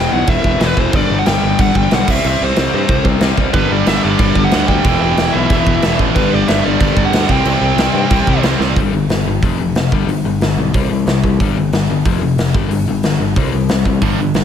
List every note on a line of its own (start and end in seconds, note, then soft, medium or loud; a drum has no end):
0.00 0.11 E2 medium
0.00 0.92 E2 medium
0.00 0.11 B2 medium
0.00 0.93 B2 loud
0.00 0.11 E3 medium
0.00 0.94 E3 loud
0.00 0.10 G5 loud
0.12 0.22 B1 medium
0.12 0.26 E2 medium
0.12 0.27 B2 loud
0.12 0.27 E3 loud
0.12 0.29 F#5 loud
0.27 0.38 E1 loud
0.27 0.60 E2 loud
0.27 0.61 B2 loud
0.27 0.61 E3 loud
0.27 0.62 E5 loud
0.27 kick loud
0.27 crash medium
0.44 0.55 E1 medium
0.44 kick loud
0.60 0.71 E1 medium
0.60 0.77 E2 medium
0.60 0.76 B2 loud
0.60 0.76 E3 loud
0.60 0.78 B4 medium
0.60 snare loud
0.60 crash medium
0.77 0.87 E1 medium
0.77 0.93 E2 medium
0.77 0.93 B2 medium
0.77 0.93 E3 loud
0.77 0.95 C5 medium
0.77 kick medium
0.93 1.03 G1 loud
0.93 1.26 G2 medium
0.93 1.26 D3 loud
0.93 1.27 G3 loud
0.93 1.20 D5 loud
0.93 kick loud
0.93 crash medium
1.10 1.20 G1 loud
1.19 1.26 F#5 medium
1.26 1.37 G1 loud
1.26 1.42 G2 medium
1.26 1.42 D3 medium
1.26 1.42 G3 medium
1.26 1.60 G5 loud
1.26 snare loud
1.26 crash medium
1.42 1.53 G1 medium
1.42 1.58 G2 medium
1.42 1.59 D3 medium
1.42 1.60 G3 loud
1.59 1.69 G1 loud
1.59 1.91 G2 loud
1.59 1.91 D3 loud
1.59 1.93 G3 loud
1.59 1.76 F#5 loud
1.59 kick loud
1.59 crash medium
1.75 1.86 G1 medium
1.75 1.93 G5 loud
1.75 kick loud
1.91 2.02 B1 loud
1.91 2.07 G2 medium
1.91 2.08 D3 medium
1.91 2.09 G3 medium
1.91 2.10 F#5 loud
1.91 snare loud
1.91 crash medium
2.08 2.18 C2 medium
2.08 2.25 C3 loud
2.08 2.25 G3 loud
2.08 2.24 C4 loud
2.08 2.26 E5 loud
2.08 kick loud
2.08 crash loud
2.24 2.35 C2 loud
2.24 2.57 C3 medium
2.24 2.58 G3 medium
2.24 2.57 C4 loud
2.24 2.43 E5 loud
2.24 crash medium
2.41 2.51 C2 loud
2.41 3.03 C5 medium
2.56 2.67 C2 loud
2.56 2.73 C3 medium
2.56 2.74 G3 medium
2.56 2.74 C4 medium
2.56 snare loud
2.56 crash medium
2.73 2.83 G2 medium
2.73 2.89 C3 medium
2.73 2.90 G3 medium
2.73 2.88 C4 loud
2.88 3.00 C2 loud
2.88 3.23 C3 medium
2.88 3.23 G3 medium
2.88 3.22 C4 loud
2.88 kick loud
2.88 crash medium
3.04 3.15 C2 loud
3.04 kick loud
3.21 3.31 C2 loud
3.21 3.37 C3 medium
3.21 3.38 G3 medium
3.21 3.38 C4 loud
3.21 snare loud
3.21 crash medium
3.38 3.48 C2 medium
3.38 3.54 C3 medium
3.38 3.55 G3 medium
3.38 3.55 C4 loud
3.38 kick medium
3.54 3.64 G1 loud
3.54 3.86 G2 medium
3.54 3.86 D3 loud
3.54 3.88 G3 loud
3.54 3.71 B4 medium
3.54 kick loud
3.54 crash medium
3.71 3.81 G1 medium
3.71 3.87 D5 loud
3.86 3.97 G1 medium
3.86 4.03 G2 medium
3.86 4.03 D3 loud
3.86 4.03 G3 medium
3.86 4.03 E5 loud
3.86 snare loud
3.86 crash medium
4.03 4.14 G1 medium
4.03 4.19 G2 medium
4.03 4.19 D3 medium
4.03 4.20 G3 medium
4.03 4.46 D5 medium
4.19 4.30 G1 loud
4.19 4.51 G2 medium
4.19 4.52 D3 loud
4.19 4.53 G3 loud
4.19 kick loud
4.19 crash medium
4.35 4.46 G1 loud
4.35 kick medium
4.44 4.67 F#5 loud
4.51 4.64 D2 loud
4.51 4.70 G2 medium
4.51 4.69 D3 loud
4.51 4.69 G3 loud
4.51 snare loud
4.51 crash medium
4.68 4.79 D2 medium
4.68 4.85 G2 medium
4.68 4.85 D3 medium
4.68 4.86 G3 loud
4.68 5.01 G5 loud
4.68 kick medium
4.84 4.95 E1 loud
4.84 5.18 E2 loud
4.84 5.18 B2 loud
4.84 5.19 E3 loud
4.84 kick loud
4.84 crash medium
5.02 5.12 E1 loud
5.02 5.36 G5 loud
5.17 5.29 E1 medium
5.17 5.35 E2 medium
5.17 5.35 B2 medium
5.17 5.34 E3 loud
5.17 snare loud
5.17 crash medium
5.33 5.45 B1 medium
5.33 5.50 E2 medium
5.33 5.51 B2 medium
5.33 5.52 E3 loud
5.33 5.95 E5 loud
5.50 5.60 E1 loud
5.50 5.82 E2 loud
5.50 5.83 B2 loud
5.50 5.84 E3 loud
5.50 kick loud
5.50 crash medium
5.67 5.77 E1 medium
5.67 kick loud
5.82 5.95 E1 loud
5.82 5.99 E2 medium
5.82 5.99 B2 medium
5.82 5.98 E3 loud
5.82 snare loud
5.82 crash medium
5.99 6.09 A1 medium
5.99 6.15 E2 medium
5.99 6.15 B2 medium
5.99 6.15 E3 medium
5.99 kick medium
6.15 6.26 G1 loud
6.15 6.46 G2 loud
6.15 6.47 D3 loud
6.15 6.48 G3 loud
6.15 6.34 B4 loud
6.15 kick loud
6.15 crash medium
6.33 6.43 G1 loud
6.33 6.50 D5 medium
6.48 6.59 G1 loud
6.48 6.64 G2 medium
6.48 6.63 D3 medium
6.48 6.63 G3 loud
6.48 6.64 E5 loud
6.48 snare loud
6.48 crash medium
6.63 6.75 G1 medium
6.63 6.79 G2 medium
6.63 6.80 D3 medium
6.63 6.81 G3 medium
6.63 7.07 D5 medium
6.80 6.91 G1 loud
6.80 7.12 G2 medium
6.80 7.12 D3 loud
6.80 7.14 G3 loud
6.80 kick loud
6.80 crash medium
6.96 7.07 G1 loud
6.96 kick loud
7.05 7.31 F#5 loud
7.13 7.24 D2 loud
7.13 7.29 G2 medium
7.13 7.28 D3 medium
7.13 7.29 G3 medium
7.13 snare loud
7.13 crash medium
7.29 7.40 C2 medium
7.29 7.46 C3 loud
7.29 7.45 G3 loud
7.29 7.45 C4 loud
7.29 7.47 G5 loud
7.29 kick loud
7.45 7.56 C2 loud
7.45 7.79 C3 medium
7.45 7.79 G3 medium
7.45 7.78 C4 loud
7.45 8.41 G5 loud
7.45 crash medium
7.61 7.72 C2 loud
7.76 7.87 C2 medium
7.76 7.94 G3 medium
7.76 7.95 C4 medium
7.76 snare loud
7.76 crash medium
7.81 7.94 C3 medium
7.94 8.04 G2 medium
7.94 8.11 C3 medium
7.94 8.10 G3 medium
7.94 8.10 C4 medium
8.10 8.21 C2 medium
8.10 8.44 C3 medium
8.10 8.43 G3 medium
8.10 8.43 C4 loud
8.10 kick loud
8.10 crash medium
8.27 8.38 C2 loud
8.27 kick loud
8.43 8.53 C2 loud
8.43 8.61 C3 medium
8.43 8.61 G3 medium
8.43 8.62 C4 loud
8.43 snare loud
8.43 crash medium
8.59 8.78 C2 medium
8.59 8.77 C3 medium
8.59 8.77 G3 medium
8.59 8.77 C4 medium
8.59 snare medium
8.76 8.91 G1 loud
8.76 8.93 G2 medium
8.76 8.93 D3 medium
8.76 8.93 G3 medium
8.76 kick loud
8.76 open hi-hat soft
8.93 9.07 G1 medium
8.93 9.09 G2 medium
8.93 9.09 D3 medium
9.09 9.24 G1 medium
9.09 9.25 G2 medium
9.09 9.26 D3 medium
9.09 snare loud
9.09 open hi-hat medium
9.25 9.40 G1 medium
9.25 9.42 G2 medium
9.25 9.42 D3 medium
9.42 9.57 F1 medium
9.42 9.59 F2 medium
9.42 9.59 C3 medium
9.42 9.59 F3 medium
9.42 kick loud
9.42 open hi-hat medium
9.59 9.74 F1 medium
9.59 9.75 F2 medium
9.59 9.75 C3 medium
9.75 9.90 F1 medium
9.75 9.91 F2 medium
9.75 9.91 C3 medium
9.75 snare loud
9.75 open hi-hat medium
9.92 10.06 G1 medium
9.92 10.08 G2 medium
9.92 10.08 D3 medium
9.92 10.08 G3 medium
9.92 kick loud
10.07 10.22 G1 medium
10.07 10.24 G2 medium
10.07 10.24 D3 medium
10.07 open hi-hat medium
10.24 10.39 G1 medium
10.24 10.40 G2 medium
10.24 10.40 D3 medium
10.40 10.55 G1 medium
10.40 10.57 G2 medium
10.40 10.57 D3 medium
10.40 snare loud
10.40 open hi-hat medium
10.57 10.72 B1 medium
10.57 10.73 G2 medium
10.57 10.73 D3 medium
10.74 10.89 C2 loud
10.74 10.89 C3 medium
10.74 10.89 G3 medium
10.74 10.90 C4 medium
10.74 kick loud
10.74 open hi-hat medium
10.90 11.05 C2 medium
10.90 11.05 C3 medium
10.90 11.05 G3 medium
11.06 11.21 C2 medium
11.06 11.23 C3 medium
11.06 11.23 G3 medium
11.06 snare loud
11.06 open hi-hat medium
11.24 11.38 C2 medium
11.24 11.39 C3 medium
11.24 11.39 G3 medium
11.24 kick medium
11.40 11.54 G1 loud
11.40 11.56 G2 medium
11.40 11.57 D3 medium
11.40 11.57 G3 medium
11.40 kick loud
11.40 open hi-hat medium
11.58 11.71 G1 medium
11.58 11.72 G2 medium
11.58 11.72 D3 medium
11.73 11.87 G1 medium
11.73 11.88 G2 medium
11.73 11.88 D3 medium
11.73 snare loud
11.73 open hi-hat medium
11.90 12.04 G1 medium
11.90 12.04 G2 medium
11.90 12.05 D3 medium
12.05 12.20 F1 medium
12.05 12.20 F2 medium
12.05 12.21 C3 medium
12.05 12.21 F3 medium
12.05 kick loud
12.05 open hi-hat medium
12.22 12.37 F1 medium
12.22 12.37 F2 medium
12.22 12.37 C3 medium
12.38 12.53 F1 medium
12.38 12.54 F2 medium
12.38 12.54 C3 medium
12.38 snare loud
12.38 open hi-hat medium
12.54 12.69 G1 medium
12.54 12.69 G2 medium
12.54 12.70 D3 loud
12.54 12.71 G3 loud
12.54 kick loud
12.70 12.86 G1 loud
12.70 12.86 G2 medium
12.70 12.86 D3 medium
12.70 open hi-hat medium
12.88 13.03 G1 medium
12.88 13.03 G2 medium
12.88 13.03 D3 medium
13.03 13.18 G1 medium
13.03 13.19 G2 medium
13.03 13.19 D3 medium
13.03 snare loud
13.03 open hi-hat medium
13.20 13.34 G1 medium
13.20 13.35 G2 medium
13.20 13.36 D3 medium
13.36 13.51 C2 medium
13.36 13.52 C3 medium
13.36 13.53 G3 medium
13.36 13.53 C4 medium
13.36 kick loud
13.36 open hi-hat medium
13.53 13.68 C2 medium
13.53 13.68 C3 medium
13.53 13.69 G3 medium
13.69 13.85 C2 medium
13.69 13.85 C3 medium
13.69 13.85 G3 medium
13.69 snare loud
13.69 open hi-hat medium
13.85 14.00 C2 medium
13.85 14.01 C3 medium
13.85 14.02 G3 medium
13.85 kick medium
14.02 14.17 G1 loud
14.02 14.18 G2 medium
14.02 14.18 D3 medium
14.02 14.19 G3 medium
14.02 kick loud
14.02 open hi-hat medium
14.19 14.33 G1 medium
14.19 14.34 G2 medium
14.19 14.34 D3 medium
14.34 14.44 G1 medium
14.34 14.44 G2 medium
14.34 14.44 D3 medium
14.34 snare loud
14.34 open hi-hat medium